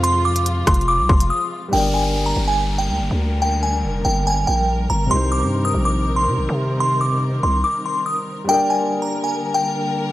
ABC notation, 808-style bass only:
X:1
M:4/4
L:1/16
Q:1/4=142
K:Gphr
V:1 name="808-style bass" clef=bass
F,,6 F,,,3 C,, F,,,2 z4 | G,,,6 G,,,4- G,,, D,, G,,, D,,3- | D,,4 F,,,2 G,,,4 B,,,4 G,,,2 | C,,3 G,,3 B,,,4- B,,, C, B,,, C,3- |
C,6 C,,2 z8 | z16 |]